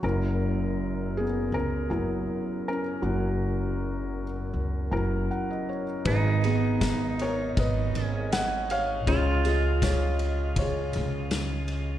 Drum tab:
RD |--------|--------|xxxxxxxx|xxxxxxxx|
SD |--------|--------|--o---o-|--o---o-|
BD |--------|--------|o-o-o---|o-o-o---|